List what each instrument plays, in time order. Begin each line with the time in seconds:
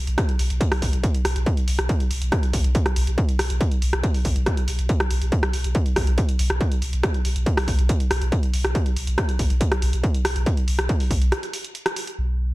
0.07 sub bass B1, closed hi-hat
0.18 kick, cross-stick, closed hi-hat
0.29 closed hi-hat
0.39 sub bass B1, open hi-hat
0.50 sub bass B1, closed hi-hat
0.61 kick, closed hi-hat
0.72 cross-stick, open hi-hat
0.82 sub bass B1, kick, open hi-hat
0.93 sub bass B1, closed hi-hat
1.04 kick, closed hi-hat
1.15 closed hi-hat
1.25 sub bass B1, cross-stick, open hi-hat
1.36 sub bass B1, closed hi-hat
1.46 kick, closed hi-hat
1.57 closed hi-hat
1.68 sub bass B1, open hi-hat
1.79 sub bass B1, cross-stick, closed hi-hat
1.89 kick, closed hi-hat
2.00 closed hi-hat
2.11 sub bass B1, open hi-hat
2.22 sub bass B1, closed hi-hat
2.32 kick, cross-stick, closed hi-hat
2.43 closed hi-hat
2.53 sub bass B1, kick, open hi-hat
2.64 sub bass B1, closed hi-hat
2.75 kick, closed hi-hat
2.86 cross-stick, closed hi-hat
2.96 sub bass B1, open hi-hat
3.07 sub bass B1, closed hi-hat
3.18 kick, closed hi-hat
3.29 closed hi-hat
3.39 sub bass B1, cross-stick, open hi-hat
3.50 sub bass B1, closed hi-hat
3.61 kick, closed hi-hat
3.71 closed hi-hat
3.82 sub bass B1, open hi-hat
3.93 sub bass B1, cross-stick, closed hi-hat
4.03 kick, closed hi-hat
4.14 open hi-hat
4.25 sub bass B1, kick, open hi-hat
4.36 sub bass B1, closed hi-hat
4.46 kick, cross-stick, closed hi-hat
4.57 closed hi-hat
4.68 sub bass B1, open hi-hat
4.79 sub bass B1, closed hi-hat
4.89 kick, closed hi-hat
5.00 cross-stick, closed hi-hat
5.11 sub bass B1, open hi-hat
5.22 sub bass B1, closed hi-hat
5.32 kick, closed hi-hat
5.43 cross-stick, closed hi-hat
5.53 sub bass B1, open hi-hat
5.64 sub bass B1, closed hi-hat
5.75 kick, closed hi-hat
5.86 closed hi-hat
5.96 sub bass B1, kick, cross-stick, open hi-hat
6.07 sub bass B1, closed hi-hat
6.18 kick, closed hi-hat
6.29 closed hi-hat
6.39 sub bass B1, open hi-hat
6.50 sub bass B1, cross-stick, closed hi-hat
6.61 kick, closed hi-hat
6.72 closed hi-hat
6.82 sub bass B1, open hi-hat
6.93 sub bass B1, closed hi-hat
7.03 kick, cross-stick, closed hi-hat
7.14 closed hi-hat
7.25 sub bass B1, open hi-hat
7.36 sub bass B1, closed hi-hat
7.46 kick, closed hi-hat
7.57 cross-stick, open hi-hat
7.68 sub bass B1, kick, open hi-hat
7.79 sub bass B1, closed hi-hat
7.89 kick, closed hi-hat
8.00 closed hi-hat
8.11 sub bass B1, cross-stick, open hi-hat
8.22 sub bass B1, closed hi-hat
8.32 kick, closed hi-hat
8.43 closed hi-hat
8.54 sub bass B1, open hi-hat
8.65 sub bass B1, cross-stick, closed hi-hat
8.75 kick, closed hi-hat
8.86 closed hi-hat
8.96 sub bass B1, open hi-hat
9.07 sub bass B1, closed hi-hat
9.18 kick, cross-stick, closed hi-hat
9.29 closed hi-hat
9.39 sub bass B1, kick, open hi-hat
9.50 sub bass B1, closed hi-hat
9.61 kick, closed hi-hat
9.72 cross-stick, closed hi-hat
9.82 sub bass B1, open hi-hat
9.93 sub bass B1, closed hi-hat
10.04 kick, closed hi-hat
10.14 closed hi-hat
10.25 sub bass B1, cross-stick, open hi-hat
10.36 sub bass B1, closed hi-hat
10.46 kick, closed hi-hat
10.57 closed hi-hat
10.68 sub bass B1, open hi-hat
10.79 sub bass B1, cross-stick, closed hi-hat
10.89 kick, closed hi-hat
11.00 open hi-hat
11.11 sub bass B1, kick, open hi-hat
11.22 sub bass B1, closed hi-hat
11.32 cross-stick, closed hi-hat
11.43 closed hi-hat
11.53 open hi-hat
11.64 closed hi-hat
11.75 closed hi-hat
11.86 cross-stick, closed hi-hat
11.96 open hi-hat
12.07 closed hi-hat
12.18 sub bass B1